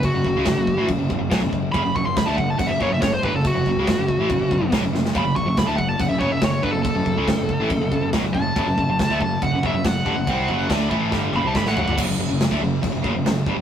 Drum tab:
CC |x---x---x---x---|x---x---x---x---|x---x---x---x---|x---x---x---x---|
SD |----o-------o---|----o-------o---|----o-------o-oo|----o-------o---|
T2 |----------------|----------------|----------------|----------------|
FT |----------------|----------------|----------------|----------------|
BD |o-o-o-o-o-o-o-o-|o-o-o-o-o-o-o-o-|o-o-o-o-o-o-o---|o-o-o-o-o-o-o-o-|

CC |x---x---x---x---|x---x---x---x---|x---x-----------|x---x---x---x---|
SD |----o-------o---|----o-------o---|----o---o---oo--|----o-------o---|
T2 |----------------|----------------|----------o-----|----------------|
FT |----------------|----------------|--------------oo|----------------|
BD |o-o-o-o-o-o-o-o-|o-o-o-o-o-o-o-o-|o-o-o-o-o---o---|o----o--o-o---o-|